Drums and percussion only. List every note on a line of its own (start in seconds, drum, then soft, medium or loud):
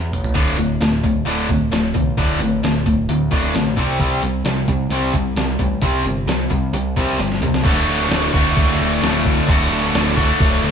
0.13 closed hi-hat medium
0.13 mid tom medium
0.24 floor tom medium
0.35 kick medium
0.35 closed hi-hat medium
0.35 splash medium
0.58 closed hi-hat medium
0.81 snare loud
0.81 closed hi-hat medium
1.04 kick medium
1.04 closed hi-hat medium
1.27 closed hi-hat medium
1.49 kick medium
1.49 closed hi-hat medium
1.72 snare loud
1.72 closed hi-hat medium
1.95 kick medium
1.95 closed hi-hat medium
2.18 kick medium
2.18 closed hi-hat medium
2.41 closed hi-hat medium
2.64 snare loud
2.64 closed hi-hat medium
2.86 kick medium
2.86 closed hi-hat medium
3.09 closed hi-hat medium
3.32 kick medium
3.32 closed hi-hat medium
3.44 snare soft
3.55 snare loud
3.55 closed hi-hat medium
3.77 kick medium
3.77 closed hi-hat medium
4.00 kick loud
4.00 closed hi-hat medium
4.22 closed hi-hat medium
4.45 snare loud
4.45 closed hi-hat medium
4.68 kick medium
4.68 closed hi-hat medium
4.91 closed hi-hat medium
5.13 kick medium
5.13 closed hi-hat medium
5.36 snare loud
5.36 closed hi-hat medium
5.59 kick medium
5.59 closed hi-hat medium
5.82 kick loud
5.82 closed hi-hat medium
6.05 closed hi-hat medium
6.28 snare loud
6.28 closed hi-hat medium
6.51 kick medium
6.51 closed hi-hat medium
6.74 closed hi-hat medium
6.96 kick medium
6.96 closed hi-hat medium
7.09 snare soft
7.20 snare medium
7.20 closed hi-hat medium
7.32 snare medium
7.42 closed hi-hat medium
7.42 mid tom medium
7.54 snare medium
7.65 kick loud
7.65 crash loud
7.65 crash medium
7.88 crash medium
8.11 snare loud
8.11 crash medium
8.34 kick medium
8.34 crash medium
8.57 kick loud
8.57 crash medium
8.80 crash medium
9.03 snare loud
9.03 crash medium
9.26 kick medium
9.26 crash medium
9.49 kick loud
9.49 crash medium
9.71 crash medium
9.94 snare loud
9.94 crash medium
10.17 kick medium
10.17 crash medium
10.40 kick loud
10.40 crash medium
10.64 crash medium